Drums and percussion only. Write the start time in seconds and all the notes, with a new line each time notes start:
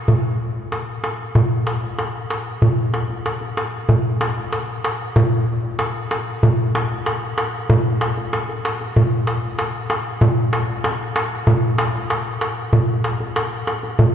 0.08 darbuka dum
0.72 darbuka tek
1.04 darbuka tek
1.35 darbuka dum
1.67 darbuka tek
1.99 darbuka tek
2.30 darbuka tek
2.62 darbuka dum
2.78 darbuka tek
2.94 darbuka tek
3.10 darbuka tek
3.26 darbuka tek
3.41 darbuka tek
3.57 darbuka tek
3.89 darbuka dum
4.21 darbuka tek
4.53 darbuka tek
4.84 darbuka tek
5.16 darbuka dum
5.79 darbuka tek
6.11 darbuka tek
6.43 darbuka dum
6.75 darbuka tek
7.06 darbuka tek
7.38 darbuka tek
7.70 darbuka dum
7.86 darbuka tek
8.01 darbuka tek
8.17 darbuka tek
8.33 darbuka tek
8.49 darbuka tek
8.65 darbuka tek
8.81 darbuka tek
8.96 darbuka dum
9.27 darbuka tek
9.59 darbuka tek
9.90 darbuka tek
10.21 darbuka dum
10.53 darbuka tek
10.84 darbuka tek
11.16 darbuka tek
11.47 darbuka dum
11.78 darbuka tek
12.10 darbuka tek
12.41 darbuka tek
12.73 darbuka dum
13.04 darbuka tek
13.20 darbuka tek
13.36 darbuka tek
13.67 darbuka tek
13.83 darbuka tek
13.99 darbuka dum